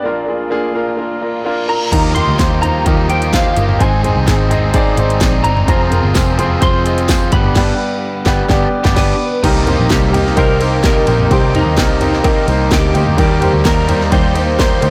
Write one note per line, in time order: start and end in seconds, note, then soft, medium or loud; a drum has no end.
0.00 0.23 A#3 medium
0.00 1.89 D4 medium
0.00 1.42 D5 medium
0.05 1.89 A#1 soft
0.05 1.89 A#2 soft
0.05 1.91 A#3 medium
0.05 0.23 D4 medium
0.05 1.91 F4 medium
0.05 0.24 F4 medium
0.05 0.24 A#4 medium
0.26 0.46 A#3 medium
0.26 0.46 D4 medium
0.26 0.47 F4 medium
0.26 0.47 G#4 medium
0.50 0.70 A#3 medium
0.50 0.70 D4 medium
0.50 0.70 F4 medium
0.50 0.70 G#4 loud
0.74 0.93 A#3 medium
0.74 0.93 D4 medium
0.74 0.94 F4 medium
0.74 0.94 A#4 medium
0.97 1.17 A#3 medium
0.97 1.17 D4 medium
0.97 1.17 F4 medium
0.97 1.17 A#4 medium
0.97 reverse cymbal medium
1.21 1.40 A#3 medium
1.21 1.41 D4 medium
1.21 1.41 F4 medium
1.21 1.41 A#4 medium
1.21 1.44 A#5 medium
1.45 1.64 A#3 medium
1.45 1.64 D4 medium
1.45 1.64 F4 medium
1.45 1.65 A#4 medium
1.45 1.89 F5 medium
1.68 1.87 A#3 medium
1.68 1.88 D4 medium
1.68 1.88 F4 medium
1.68 1.88 A#4 medium
1.68 1.91 A#5 medium
1.92 2.25 D#2 medium
1.92 2.16 D#3 medium
1.92 2.59 D#3 medium
1.92 5.64 D#3 medium
1.92 3.78 F3 medium
1.92 2.16 F3 medium
1.92 3.78 G3 medium
1.92 3.78 A#3 medium
1.92 2.17 A#3 medium
1.92 2.11 D#4 medium
1.92 2.16 D#4 medium
1.92 2.11 F4 medium
1.92 3.78 F4 medium
1.92 2.11 G4 medium
1.92 2.14 G4 medium
1.92 2.12 A#4 medium
1.92 2.14 A#5 medium
1.92 kick loud
1.92 closed hi-hat medium
1.92 crash medium
2.15 2.39 A#3 soft
2.15 2.34 D#4 medium
2.15 2.40 D#4 medium
2.15 2.34 F4 medium
2.15 2.39 G4 medium
2.15 2.35 G4 medium
2.15 2.35 A#4 medium
2.15 2.61 C6 medium
2.15 closed hi-hat medium
2.15 floor tom medium
2.28 2.39 D2 medium
2.38 2.83 D#2 medium
2.38 2.63 F3 medium
2.38 2.63 A#3 medium
2.38 2.57 D#4 medium
2.38 2.63 D#4 medium
2.38 2.58 F4 medium
2.38 2.58 G4 medium
2.38 2.59 C5 medium
2.38 kick loud
2.38 snare loud
2.38 closed hi-hat medium
2.42 2.61 G4 medium
2.62 2.86 A#3 soft
2.62 2.81 D#4 medium
2.62 2.87 D#4 medium
2.62 2.82 F4 medium
2.62 2.86 G4 medium
2.62 2.82 G4 medium
2.62 2.82 C5 medium
2.62 3.11 A#5 medium
2.62 closed hi-hat medium
2.62 floor tom medium
2.85 3.53 D#2 medium
2.85 3.10 D#3 medium
2.85 3.10 F3 medium
2.85 3.10 A#3 medium
2.85 3.05 D#4 medium
2.85 3.10 D#4 medium
2.85 3.05 F4 medium
2.85 3.05 G4 medium
2.85 3.08 G4 loud
2.85 3.05 A#4 loud
2.85 kick loud
2.85 closed hi-hat medium
3.09 3.33 A#3 soft
3.09 3.28 D#4 medium
3.09 3.34 D#4 medium
3.09 3.28 F4 medium
3.09 3.33 G4 medium
3.09 3.29 G4 medium
3.09 3.29 C5 medium
3.09 3.34 G5 medium
3.09 closed hi-hat medium
3.22 closed hi-hat medium
3.32 3.57 F3 medium
3.32 3.57 A#3 medium
3.32 3.51 D#4 medium
3.32 3.57 D#4 medium
3.32 3.52 F4 medium
3.32 3.52 G4 medium
3.32 3.55 G4 medium
3.32 3.52 C5 medium
3.32 3.82 F5 medium
3.32 kick loud
3.32 snare loud
3.32 closed hi-hat medium
3.56 3.79 G1 medium
3.56 3.81 A#3 soft
3.56 3.75 D#4 medium
3.56 3.81 D#4 medium
3.56 3.75 F4 medium
3.56 3.80 G4 medium
3.56 3.75 G4 medium
3.56 3.76 A#4 medium
3.56 closed hi-hat medium
3.69 floor tom medium
3.79 4.13 G#1 loud
3.79 4.47 G#2 medium
3.79 4.04 G#2 medium
3.79 4.04 D#3 medium
3.79 7.29 G#3 medium
3.79 4.04 G#3 medium
3.79 3.98 C4 medium
3.79 7.29 C4 medium
3.79 4.04 C4 medium
3.79 3.99 D#4 medium
3.79 4.03 D#4 medium
3.79 3.99 G#4 medium
3.79 4.02 G#4 loud
3.79 3.99 C5 loud
3.79 4.71 G#5 medium
3.79 kick loud
3.79 closed hi-hat medium
4.03 4.25 G#3 soft
4.03 4.22 C4 medium
4.03 4.26 C4 medium
4.03 4.22 D#4 medium
4.03 4.27 D#4 medium
4.03 4.27 G#4 medium
4.03 4.23 G#4 medium
4.03 4.23 C5 medium
4.03 closed hi-hat medium
4.03 floor tom medium
4.16 4.27 C2 medium
4.26 4.95 G#1 loud
4.26 4.50 G#3 medium
4.26 4.45 C4 medium
4.26 4.51 C4 medium
4.26 4.46 D#4 medium
4.26 4.50 D#4 medium
4.26 4.46 G#4 medium
4.26 4.49 G#4 medium
4.26 4.46 C5 medium
4.26 kick loud
4.26 snare loud
4.26 closed hi-hat medium
4.49 4.69 C4 medium
4.49 4.74 C4 medium
4.49 4.69 D#4 medium
4.49 4.74 D#4 medium
4.49 4.74 G#4 medium
4.49 4.69 G#4 medium
4.49 4.70 D#5 medium
4.49 closed hi-hat medium
4.49 floor tom medium
4.53 4.73 G#3 soft
4.73 4.97 G#2 medium
4.73 4.98 D#3 medium
4.73 4.98 G#3 medium
4.73 4.93 C4 loud
4.73 4.98 C4 medium
4.73 4.93 D#4 loud
4.73 4.97 D#4 medium
4.73 4.93 G#4 loud
4.73 4.96 G#4 loud
4.73 4.94 D5 loud
4.73 kick loud
4.73 closed hi-hat medium
4.97 5.20 G#1 loud
4.97 5.20 G#3 soft
4.97 5.16 C4 medium
4.97 5.21 C4 soft
4.97 5.17 D#4 medium
4.97 5.22 D#4 medium
4.97 5.21 G#4 medium
4.97 5.17 G#4 medium
4.97 5.17 C5 medium
4.97 closed hi-hat medium
5.10 closed hi-hat medium
5.20 5.43 A#1 medium
5.20 5.45 G#3 medium
5.20 5.39 C4 medium
5.20 5.45 C4 medium
5.20 5.40 D#4 medium
5.20 5.44 D#4 medium
5.20 5.40 G#4 medium
5.20 5.43 G#4 medium
5.20 5.40 D5 medium
5.20 kick loud
5.20 snare loud
5.20 closed hi-hat medium
5.44 5.66 G1 medium
5.44 5.67 G#3 medium
5.44 5.63 C4 medium
5.44 5.67 C4 soft
5.44 5.63 D#4 medium
5.44 5.68 D#4 medium
5.44 5.68 G#4 medium
5.44 5.63 G#4 medium
5.44 5.64 D5 medium
5.44 5.67 A#5 medium
5.44 closed hi-hat medium
5.57 floor tom medium
5.67 6.01 F1 loud
5.67 5.91 F3 medium
5.67 7.31 F3 medium
5.67 5.86 C4 medium
5.67 5.92 C4 medium
5.67 5.86 F4 medium
5.67 5.91 F4 medium
5.67 5.87 G#4 medium
5.67 5.90 G#4 loud
5.67 5.87 C5 loud
5.67 6.62 A#5 medium
5.67 kick loud
5.67 closed hi-hat medium
5.90 6.09 C4 medium
5.90 6.10 F4 medium
5.90 6.15 F4 medium
5.90 6.15 G#4 medium
5.90 6.10 G#4 medium
5.90 6.10 A#4 medium
5.90 closed hi-hat medium
5.90 floor tom medium
5.94 6.15 C4 medium
6.03 6.14 G1 medium
6.14 6.59 F1 loud
6.14 6.38 F3 medium
6.14 6.33 C4 medium
6.14 6.39 C4 medium
6.14 6.34 F4 medium
6.14 6.38 F4 medium
6.14 6.34 G#4 medium
6.14 6.36 G#4 medium
6.14 6.34 C5 medium
6.14 kick loud
6.14 snare loud
6.14 closed hi-hat loud
6.14 tambourine medium
6.37 6.57 C4 medium
6.37 6.61 C4 medium
6.37 6.57 F4 medium
6.37 6.62 F4 medium
6.37 6.61 G#4 medium
6.37 6.57 G#4 medium
6.37 6.58 C5 medium
6.37 closed hi-hat medium
6.37 floor tom medium
6.61 7.29 F1 loud
6.61 6.85 F3 medium
6.61 6.80 C4 loud
6.61 6.85 C4 medium
6.61 6.80 F4 medium
6.61 6.86 F4 loud
6.61 6.81 G#4 medium
6.61 6.84 G#4 loud
6.61 6.81 C5 loud
6.61 7.32 C6 loud
6.61 kick loud
6.61 closed hi-hat medium
6.85 7.04 C4 medium
6.85 7.08 C4 medium
6.85 7.04 F4 medium
6.85 7.09 F4 medium
6.85 7.09 G#4 medium
6.85 7.04 G#4 medium
6.85 7.05 D#5 medium
6.85 closed hi-hat medium
6.98 closed hi-hat medium
7.08 7.32 F3 medium
7.08 7.27 C4 medium
7.08 7.33 C4 medium
7.08 7.27 F4 medium
7.08 7.33 F4 medium
7.08 7.28 G#4 medium
7.08 7.31 G#4 medium
7.08 7.28 C5 medium
7.08 kick loud
7.08 snare loud
7.08 closed hi-hat medium
7.08 tambourine medium
7.32 7.54 G1 loud
7.32 7.54 G2 medium
7.32 9.42 D3 medium
7.32 9.42 G3 medium
7.32 7.55 G3 soft
7.32 7.54 B3 medium
7.32 7.55 B3 medium
7.32 9.42 B3 medium
7.32 7.55 D4 medium
7.32 7.56 D4 medium
7.32 7.55 G4 medium
7.32 7.56 B4 medium
7.32 9.16 B5 medium
7.32 kick loud
7.32 closed hi-hat medium
7.44 floor tom medium
7.55 7.72 G1 loud
7.55 7.71 G2 loud
7.55 7.72 G2 loud
7.55 7.72 D3 loud
7.55 7.72 G3 medium
7.55 7.72 B3 medium
7.55 7.72 B3 loud
7.55 7.72 D4 medium
7.55 7.73 D4 loud
7.55 7.72 G4 medium
7.55 7.73 G4 loud
7.55 7.73 B4 medium
7.55 kick loud
7.55 snare loud
7.55 crash medium
8.26 8.42 G1 loud
8.26 8.44 G3 loud
8.26 8.42 B3 loud
8.26 8.43 B3 loud
8.26 8.42 D4 loud
8.26 8.43 D4 loud
8.26 8.42 G4 loud
8.26 8.43 G4 loud
8.26 8.43 B4 loud
8.26 kick loud
8.26 snare loud
8.49 8.66 G1 loud
8.49 8.65 G2 loud
8.49 8.65 D3 loud
8.49 8.66 G3 loud
8.49 8.65 B3 loud
8.49 8.66 B3 loud
8.49 8.66 D4 loud
8.49 8.66 G4 loud
8.49 8.66 D5 loud
8.49 kick loud
8.49 snare loud
8.84 8.95 G1 loud
8.84 8.94 G3 loud
8.84 8.94 B3 loud
8.84 8.95 B3 loud
8.84 8.94 D4 loud
8.84 8.95 D4 loud
8.84 8.94 G4 loud
8.84 8.95 G4 loud
8.84 8.95 D5 loud
8.84 kick loud
8.84 snare loud
8.95 9.13 G1 loud
8.95 9.12 G3 loud
8.95 9.12 B3 medium
8.95 9.13 B3 loud
8.95 9.12 D4 loud
8.95 9.14 D4 loud
8.95 9.13 G4 medium
8.95 9.14 G4 loud
8.95 9.45 B4 loud
8.95 9.13 D5 loud
8.95 kick loud
8.95 snare loud
8.95 crash medium
9.43 9.76 C2 loud
9.43 9.67 C3 medium
9.43 13.15 C3 medium
9.43 10.10 C3 medium
9.43 14.90 D#3 medium
9.43 14.90 G3 medium
9.43 9.67 G3 loud
9.43 9.62 A#3 medium
9.43 13.15 A#3 medium
9.43 9.67 A#3 medium
9.43 9.62 C4 medium
9.43 13.15 D#4 medium
9.43 9.62 D#4 medium
9.43 9.92 D#4 medium
9.43 9.67 D#4 medium
9.43 9.62 G4 medium
9.43 9.65 G4 medium
9.43 9.63 A#4 loud
9.43 kick loud
9.43 crash medium
9.43 ride medium
9.66 9.85 A#3 medium
9.66 9.90 A#3 medium
9.66 9.85 C4 medium
9.66 9.86 D#4 medium
9.66 9.91 D#4 medium
9.66 9.90 G4 medium
9.66 9.86 G4 medium
9.66 9.86 C5 medium
9.66 floor tom medium
9.66 ride medium
9.79 9.90 A#1 medium
9.89 10.34 C2 loud
9.89 10.13 C3 medium
9.89 10.14 G3 medium
9.89 10.08 A#3 medium
9.89 10.14 A#3 loud
9.89 10.09 C4 medium
9.89 10.09 D#4 medium
9.89 10.14 D#4 medium
9.89 10.09 G4 medium
9.89 10.39 G4 medium
9.89 10.12 G4 loud
9.89 10.09 A#4 medium
9.89 kick loud
9.89 snare loud
9.89 ride medium
10.12 10.32 A#3 medium
10.12 10.32 C4 medium
10.12 10.32 D#4 medium
10.12 10.38 D#4 medium
10.12 10.37 G4 medium
10.12 10.32 G4 medium
10.12 10.33 A#4 medium
10.12 floor tom medium
10.12 ride medium
10.17 10.37 A#3 soft
10.26 snare soft
10.36 11.04 C2 loud
10.36 10.60 G3 medium
10.36 10.55 A#3 loud
10.36 10.61 A#3 medium
10.36 10.55 C4 medium
10.36 10.55 D#4 medium
10.36 10.61 D#4 medium
10.36 10.56 G4 medium
10.36 10.58 G4 medium
10.36 10.85 A#4 medium
10.36 10.56 C5 loud
10.36 kick loud
10.36 ride medium
10.60 10.79 A#3 medium
10.60 10.83 A#3 soft
10.60 10.79 C4 medium
10.60 10.79 D#4 medium
10.60 10.84 D#4 soft
10.60 10.84 G4 medium
10.60 10.80 G4 medium
10.60 10.80 C5 medium
10.60 ride medium
10.83 11.07 C3 medium
10.83 11.08 G3 loud
10.83 11.02 A#3 medium
10.83 11.08 A#3 medium
10.83 11.03 C4 medium
10.83 11.03 D#4 medium
10.83 11.07 D#4 medium
10.83 11.03 G4 medium
10.83 11.06 G4 loud
10.83 11.03 A#4 medium
10.83 11.32 A#4 loud
10.83 kick loud
10.83 snare loud
10.83 ride medium
11.07 11.30 A#1 medium
11.07 11.26 A#3 medium
11.07 11.31 A#3 medium
11.07 11.26 C4 medium
11.07 11.26 D#4 medium
11.07 11.31 D#4 medium
11.07 11.31 G4 medium
11.07 11.26 G4 medium
11.07 11.27 A#4 medium
11.07 ride medium
11.19 floor tom medium
11.30 11.64 C2 loud
11.30 11.54 C3 medium
11.30 11.97 C3 medium
11.30 11.55 G3 medium
11.30 11.49 A#3 medium
11.30 11.55 A#3 loud
11.30 11.50 C4 medium
11.30 11.50 D#4 medium
11.30 11.54 D#4 medium
11.30 11.50 G4 medium
11.30 11.56 G4 medium
11.30 11.53 G4 loud
11.30 11.50 C5 loud
11.30 kick loud
11.30 ride medium
11.54 11.73 A#3 medium
11.54 11.77 A#3 medium
11.54 11.73 C4 medium
11.54 11.73 D#4 medium
11.54 11.78 D#4 medium
11.54 12.76 D#4 medium
11.54 11.78 G4 medium
11.54 11.73 G4 medium
11.54 11.74 A#4 medium
11.54 floor tom medium
11.54 ride medium
11.66 11.78 D#2 medium
11.77 12.45 C2 loud
11.77 12.01 C3 loud
11.77 12.01 G3 medium
11.77 11.96 A#3 medium
11.77 12.02 A#3 medium
11.77 11.96 C4 medium
11.77 11.96 D#4 medium
11.77 12.01 D#4 loud
11.77 11.97 G4 medium
11.77 11.99 G4 loud
11.77 11.97 A#4 medium
11.77 kick loud
11.77 snare loud
11.77 ride medium
12.00 12.20 A#3 medium
12.00 12.24 A#3 medium
12.00 12.20 C4 medium
12.00 12.20 D#4 medium
12.00 12.25 D#4 medium
12.00 12.24 G4 medium
12.00 12.20 G4 medium
12.00 12.21 A#4 medium
12.00 floor tom medium
12.00 ride medium
12.13 snare soft
12.24 12.48 G3 medium
12.24 12.43 A#3 loud
12.24 12.48 A#3 medium
12.24 12.43 C4 loud
12.24 12.43 D#4 loud
12.24 12.48 D#4 medium
12.24 12.43 G4 loud
12.24 12.46 G4 medium
12.24 12.44 A#4 loud
12.24 kick loud
12.24 ride medium
12.47 12.70 C2 loud
12.47 12.66 A#3 medium
12.47 12.71 A#3 medium
12.47 12.66 C4 medium
12.47 12.67 D#4 medium
12.47 12.72 D#4 medium
12.47 12.71 G4 medium
12.47 12.67 G4 medium
12.47 12.67 C5 medium
12.47 ride medium
12.71 12.93 D2 loud
12.71 12.95 C3 medium
12.71 12.95 G3 medium
12.71 12.90 A#3 medium
12.71 12.95 A#3 medium
12.71 12.90 C4 medium
12.71 12.90 D#4 medium
12.71 12.95 D#4 loud
12.71 12.90 G4 medium
12.71 12.93 G4 loud
12.71 13.19 G4 loud
12.71 12.91 A#4 medium
12.71 kick loud
12.71 snare loud
12.71 ride medium
12.94 13.17 D2 medium
12.94 13.13 A#3 medium
12.94 13.18 A#3 medium
12.94 13.13 C4 medium
12.94 13.14 D#4 medium
12.94 13.18 D#4 medium
12.94 13.18 G4 medium
12.94 13.14 G4 medium
12.94 13.14 C5 medium
12.94 ride medium
13.07 floor tom medium
13.17 13.51 D#2 loud
13.17 13.41 D#3 medium
13.17 13.85 D#3 medium
13.17 13.36 G3 loud
13.17 13.42 G3 loud
13.17 13.37 A#3 medium
13.17 13.42 A#3 loud
13.17 14.90 A#3 medium
13.17 13.37 D#4 medium
13.17 13.42 D#4 medium
13.17 13.37 G4 medium
13.17 13.40 G4 loud
13.17 13.68 G4 medium
13.17 13.37 A#4 loud
13.17 kick loud
13.17 ride medium
13.41 13.60 G3 medium
13.41 13.60 A#3 medium
13.41 13.65 A#3 soft
13.41 13.61 D#4 medium
13.41 13.65 D#4 medium
13.41 13.65 G4 medium
13.41 13.61 G4 medium
13.41 13.61 C5 medium
13.41 floor tom medium
13.41 ride medium
13.53 13.64 D2 medium
13.64 14.09 D#2 loud
13.64 13.88 D#3 loud
13.64 13.83 G3 medium
13.64 13.89 G3 loud
13.64 13.84 A#3 medium
13.64 13.89 A#3 loud
13.64 13.84 D#4 medium
13.64 13.88 D#4 loud
13.64 13.84 G4 medium
13.64 13.86 G4 loud
13.64 14.13 A#4 loud
13.64 13.84 A#4 medium
13.64 kick loud
13.64 snare loud
13.64 ride medium
13.87 14.07 G3 medium
13.87 14.07 A#3 medium
13.87 14.12 A#3 medium
13.87 14.07 D#4 medium
13.87 14.13 D#4 medium
13.87 14.12 G4 medium
13.87 14.07 G4 medium
13.87 14.08 C5 medium
13.87 floor tom medium
13.87 ride medium
14.01 snare soft
14.11 14.79 D#2 loud
14.11 14.30 G3 loud
14.11 14.35 G3 medium
14.11 14.30 A#3 medium
14.11 14.36 A#3 medium
14.11 14.31 D#4 medium
14.11 14.35 D#4 medium
14.11 14.31 G4 loud
14.11 14.31 C5 loud
14.11 14.59 C5 loud
14.11 kick loud
14.11 ride medium
14.15 14.34 G4 medium
14.34 14.54 G3 medium
14.34 14.54 A#3 medium
14.34 14.59 A#3 medium
14.34 14.54 D#4 medium
14.34 14.60 D#4 medium
14.34 14.59 G4 medium
14.34 14.54 G4 medium
14.34 14.54 C5 medium
14.34 ride medium
14.58 14.83 D#3 medium
14.58 14.77 G3 medium
14.58 14.83 G3 loud
14.58 14.77 A#3 medium
14.58 14.83 A#3 medium
14.58 14.78 D#4 medium
14.58 14.83 D#4 loud
14.58 14.78 G4 medium
14.58 14.81 G4 loud
14.58 14.78 C5 medium
14.58 14.90 C5 loud
14.58 kick loud
14.58 snare loud
14.58 ride medium
14.81 14.90 D2 medium
14.81 14.90 G3 medium
14.81 14.90 A#3 medium
14.81 14.90 D#4 medium
14.81 14.90 G4 medium
14.81 14.90 C5 medium
14.81 ride medium
14.85 14.90 A#3 medium